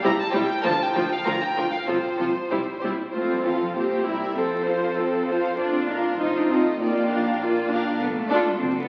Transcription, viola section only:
0.04 0.12 G3 medium
0.04 0.12 E4 medium
0.35 0.43 G3 medium
0.35 0.43 E4 medium
0.64 0.73 F3 medium
0.64 0.72 F4 medium
0.96 1.04 F3 medium
0.96 1.04 F4 soft
1.27 1.35 F3 medium
1.27 1.35 F4 medium
1.57 1.65 F3 soft
1.57 1.66 F4 soft
1.88 1.96 F3 soft
1.88 1.96 F4 medium
2.20 2.28 F3 soft
2.20 2.28 F4 soft
2.51 2.59 G3 soft
2.51 2.59 E4 soft
2.83 2.91 G3 soft
2.83 2.91 E4 soft
3.15 3.43 C4 soft
3.15 3.44 F4 soft
3.45 3.74 C4 soft
3.45 3.76 F4 soft
3.76 4.04 C4 soft
3.76 4.04 G4 soft
4.05 4.37 E4 soft
4.36 4.65 C4 soft
4.36 4.65 A4 soft
4.67 4.98 F4 soft
4.67 4.98 C5 soft
4.97 5.28 C4 soft
4.97 5.28 A4 soft
5.29 5.58 F4 soft
5.29 5.59 C5 soft
5.59 5.87 D4 soft
5.59 5.87 F4 soft
5.89 6.19 D4 soft
5.89 6.18 F4 soft
6.20 6.48 D#4 soft
6.20 6.48 F4 soft
6.50 6.81 D#4 soft
6.50 6.80 F4 soft
6.81 7.09 A#3 soft
6.81 7.09 F4 soft
7.11 7.41 D4 soft
7.42 7.72 A#3 soft
7.42 7.72 F4 soft
7.72 8.02 D4 soft
8.32 8.46 D4 soft
8.32 8.46 F4 medium

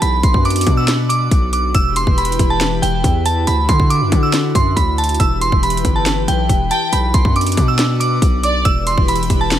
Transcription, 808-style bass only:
0.02 0.23 B1 loud
0.23 0.34 B1 loud
0.34 0.65 F#2 loud
0.67 1.29 B2 loud
1.31 1.73 B1 loud
1.75 2.06 E1 loud
2.07 2.38 E1 loud
2.39 2.81 E1 loud
2.83 3.03 E1 loud
3.04 3.46 E2 loud
3.47 3.68 D2 loud
3.69 4.03 D3 loud
4.01 4.11 F#2 loud
4.12 4.53 D3 loud
4.55 4.76 F#2 loud
4.77 5.18 D2 loud
5.20 5.51 E1 loud
5.52 5.83 E1 loud
5.85 6.26 G1 loud
6.28 6.49 B1 loud
6.49 6.70 E1 loud
6.93 7.13 B1 loud
7.14 7.24 B1 loud
7.25 7.56 F#2 loud
7.57 8.19 B2 loud
8.22 8.63 B1 loud
8.65 8.96 E1 loud
8.98 9.29 E1 loud
9.30 9.59 E1 loud

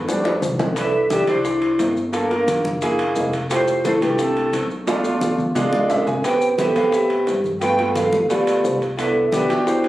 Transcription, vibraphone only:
0.78 1.09 A4 medium
1.12 1.27 G4 loud
1.29 1.93 E4 medium
2.14 2.78 D4 medium
3.52 3.86 F4 loud
3.86 3.93 E4 medium
4.02 4.10 D4 medium
4.20 4.67 C4 medium
4.88 5.52 B3 medium
6.24 6.60 B4 medium
6.59 6.76 A4 loud
6.77 6.94 A4 medium
6.93 7.41 G4 medium
7.61 7.93 B4 medium
7.94 8.30 A4 loud
8.29 8.77 G4 medium
8.97 9.30 A4 medium
9.31 9.67 G4 medium
9.65 9.88 E4 medium

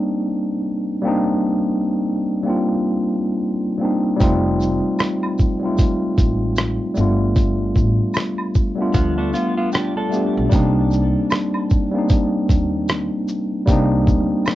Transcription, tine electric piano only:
0.00 0.52 G3 medium
0.00 0.53 A#3 medium
0.00 0.54 C4 medium
0.00 0.55 D4 medium
0.00 0.56 D#4 medium
1.02 2.14 G3 loud
1.02 2.14 A#3 loud
1.02 2.15 C4 loud
1.07 2.16 D4 loud
1.07 2.17 D#4 loud
2.43 3.51 G3 medium
2.43 3.52 A#3 medium
2.43 3.53 C4 medium
2.48 3.54 D4 medium
2.48 3.55 F4 medium
3.77 4.12 G3 medium
3.77 4.13 A#3 medium
3.77 4.14 C4 medium
3.83 4.14 D4 medium
3.83 4.15 D#4 medium
4.16 5.29 G3 loud
4.16 5.30 A3 medium
4.16 5.30 C4 loud
4.21 5.31 D#4 loud
4.21 5.32 F4 loud
5.59 6.84 G3 medium
5.59 5.67 G#3 medium
5.59 6.85 C4 medium
5.64 6.88 A3 medium
5.64 6.86 D#4 medium
5.64 6.87 F4 medium
6.94 8.23 G3 loud
6.94 8.24 A3 medium
6.94 8.25 B3 medium
7.00 8.26 D4 medium
7.00 8.27 F4 loud
8.75 9.83 G3 medium
8.75 9.84 A3 medium
8.75 9.85 B3 medium
8.81 9.86 D4 medium
8.81 9.87 F4 loud
10.09 10.43 G3 medium
10.09 10.44 A3 medium
10.09 10.45 B3 medium
10.14 10.46 D4 medium
10.14 10.47 G4 medium
10.49 11.61 G3 loud
10.49 11.61 A#3 loud
10.49 11.62 C4 loud
10.54 11.63 D4 loud
10.54 11.64 D#4 loud
11.92 13.16 G3 medium
11.92 13.17 A#3 medium
11.92 13.17 C4 medium
11.97 13.18 D4 medium
11.97 13.19 D#4 loud
13.66 14.55 G3 loud
13.66 14.55 A#3 loud
13.66 14.55 C4 loud
13.71 14.55 D4 loud
13.71 14.55 D#4 loud

